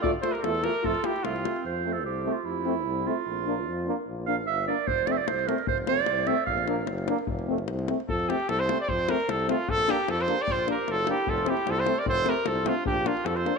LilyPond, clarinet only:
\new Staff \with { instrumentName = "Clarinet" } { \time 2/4 \key f \major \tempo 4 = 150 a'8 a'16 g'16 f'8 g'8 | f'8 e'8 c'4 | \tuplet 3/2 { c''4 a'8 g'4 f'8 } | e'4. f'8~ |
f'2 | r8 f''8 e''8 d''8 | c''8 d''32 e''32 d''16 c''8 bes'8 | c''8 d''4 e''8 |
f''8 r4. | r2 | r2 | r2 |
r2 | f'8 g'8 f'8 e'8 | f'8 e'8 f'16 a'8 bes'16 | a'8 g'8 f'8 d'8 |
d'8 d'8 f'16 a'8 r16 | }